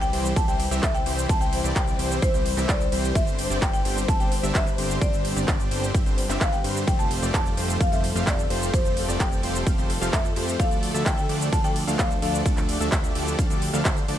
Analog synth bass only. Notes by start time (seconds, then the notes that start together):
Already playing: C2
0.13 C2
0.36 C2
0.48 C2
0.71 C2
0.83 C2
1.06 C2
1.29 C2
1.64 C2
1.76 C2
1.99 C2
2.22 C2
2.34 C2
2.57 C2
2.69 C2
2.92 C2
3.15 G1
3.50 G1
3.62 G1
3.85 G1
4.08 G1
4.20 G1
4.43 G1
4.55 G1
4.78 G1
5.01 G1
5.36 G1
5.48 G1
5.71 G1
5.95 G1
6.06 G1
6.29 G1
6.41 G1
6.64 G2
6.88 F1
7.22 F1
7.34 F1
7.57 F1
7.81 F1
7.92 F1
8.15 F1
8.27 F1
8.50 F1
8.74 F1
9.08 F1
9.20 F1
9.43 F1
9.67 F1
9.78 F1
10.01 F1
10.13 F2
10.36 F2
10.60 D2
10.94 D2
11.06 D2
11.29 D2
11.53 D2
11.64 D2
11.87 D2
11.99 D2
12.22 D2
12.46 D2
12.81 D2
12.92 D2
13.15 D2
13.39 D2
13.50 D2
13.73 D2
13.85 D2
14.08 D2